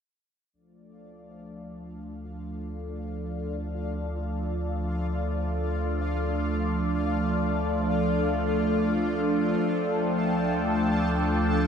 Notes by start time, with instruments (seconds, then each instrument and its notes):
0.53 sub bass D2, analog synth pad F3 A3 D4 A4 D5, synth texture F4 F5
9.59 sub bass D2, analog synth pad G5, synth texture A5